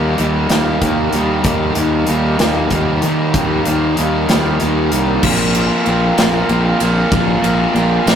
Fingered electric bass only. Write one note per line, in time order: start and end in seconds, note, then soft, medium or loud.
0.00 0.15 D#2 medium
0.19 0.47 D#2 medium
0.50 0.78 D#2 medium
0.82 1.10 D#2 medium
1.13 1.41 D#2 medium
1.44 1.73 D#2 medium
1.76 2.04 D#2 medium
2.08 2.36 D#2 medium
2.40 2.68 D#2 medium
2.70 2.99 D#2 medium
3.03 3.31 D#3 medium
3.34 3.62 D#2 medium
3.66 3.94 D#2 medium
3.99 4.26 D#2 medium
4.29 4.57 D#2 medium
4.62 4.89 D#2 medium
4.93 5.20 C2 medium
5.23 5.68 A#1 medium
5.87 6.09 A#1 medium
6.18 6.41 A#1 medium
6.49 6.71 A#1 medium
6.81 7.03 A#1 medium
7.12 7.34 A#1 medium
7.43 7.65 A#1 medium
7.75 7.97 A#1 medium
8.06 8.15 A#1 medium